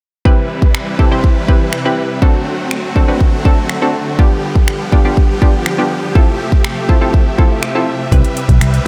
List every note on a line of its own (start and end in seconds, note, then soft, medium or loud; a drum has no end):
0.25 2.20 C3 medium
0.25 2.20 E3 medium
0.25 2.20 G3 medium
0.25 0.84 C4 medium
0.25 2.20 E4 medium
0.25 0.84 E4 medium
0.25 0.84 G4 medium
0.25 2.20 B4 medium
0.25 0.84 B4 medium
0.25 kick loud
0.62 kick medium
0.75 finger snap loud
0.99 1.09 C4 medium
0.99 1.09 E4 medium
0.99 1.09 G4 medium
0.99 1.09 A4 medium
0.99 kick medium
1.11 1.41 C4 medium
1.11 1.41 E4 medium
1.11 1.41 G4 medium
1.11 1.41 C5 medium
1.24 kick medium
1.48 1.78 C4 medium
1.48 1.78 E4 medium
1.48 1.78 G4 medium
1.48 1.78 B4 medium
1.48 kick medium
1.73 finger snap loud
1.85 2.14 C4 medium
1.85 2.15 E4 medium
1.85 2.15 G4 medium
1.85 2.15 B4 medium
2.22 6.12 D3 medium
2.22 4.17 F#3 medium
2.22 4.17 A3 medium
2.22 2.81 C4 medium
2.22 4.17 C4 medium
2.22 2.81 D4 medium
2.22 4.17 F#4 medium
2.22 2.81 F#4 medium
2.22 2.81 A4 medium
2.22 kick loud
2.71 finger snap loud
2.96 3.06 C4 medium
2.96 3.06 D4 medium
2.96 3.06 F#4 medium
2.96 3.06 A4 medium
2.96 kick medium
3.08 3.37 C4 medium
3.08 3.37 D4 medium
3.08 3.37 F#4 medium
3.08 3.38 B4 medium
3.21 kick medium
3.45 3.74 C4 medium
3.45 3.74 D4 medium
3.45 3.74 F#4 medium
3.45 3.75 A4 loud
3.45 kick loud
3.69 finger snap loud
3.82 4.11 C4 medium
3.82 4.11 D4 medium
3.82 4.11 F#4 medium
3.82 4.11 A4 medium
4.19 8.08 F3 medium
4.19 6.14 G3 medium
4.19 4.77 B3 medium
4.19 6.14 B3 medium
4.19 4.77 D4 medium
4.19 4.78 F4 medium
4.19 8.08 G4 medium
4.19 4.78 G4 loud
4.19 kick loud
4.56 kick medium
4.68 finger snap loud
4.92 5.02 B3 medium
4.92 5.02 D4 medium
4.92 5.02 F4 medium
4.92 5.03 G4 medium
4.92 kick medium
5.05 5.34 B3 medium
5.05 5.34 D4 medium
5.05 5.34 F4 medium
5.05 5.34 G4 medium
5.17 kick medium
5.42 5.71 B3 medium
5.42 5.71 D4 medium
5.42 5.71 F4 medium
5.42 5.71 G4 medium
5.42 kick medium
5.66 finger snap loud
5.78 6.08 B3 medium
5.78 6.08 D4 medium
5.78 6.08 F4 medium
5.78 6.08 G4 medium
6.15 8.88 C3 medium
6.15 8.10 A3 medium
6.15 6.74 C4 medium
6.15 6.74 E4 medium
6.15 6.74 F4 medium
6.15 6.74 A4 medium
6.15 8.88 E5 medium
6.15 kick loud
6.52 kick medium
6.64 finger snap loud
6.89 6.99 C4 medium
6.89 6.99 E4 medium
6.89 6.99 F4 medium
6.89 6.99 A4 medium
6.89 kick medium
7.01 7.31 C4 medium
7.01 7.31 E4 medium
7.01 7.31 F4 medium
7.01 7.31 A4 medium
7.14 kick medium
7.38 7.68 C4 medium
7.38 7.68 E4 medium
7.38 7.68 F4 medium
7.38 7.68 A4 medium
7.38 kick medium
7.63 finger snap loud
7.75 8.04 C4 medium
7.75 8.04 E4 medium
7.75 8.05 F4 medium
7.75 8.05 A4 medium
8.12 8.21 C2 medium
8.12 8.88 G3 medium
8.12 8.71 C4 medium
8.12 8.71 E4 medium
8.12 8.71 G4 medium
8.12 8.88 G4 medium
8.12 8.71 B4 medium
8.12 8.88 B4 medium
8.12 kick loud
8.12 closed hi-hat medium
8.25 closed hi-hat medium
8.37 closed hi-hat medium
8.49 8.57 B1 medium
8.49 kick medium
8.49 closed hi-hat medium
8.61 8.78 C2 medium
8.61 finger snap loud
8.61 closed hi-hat medium
8.74 closed hi-hat medium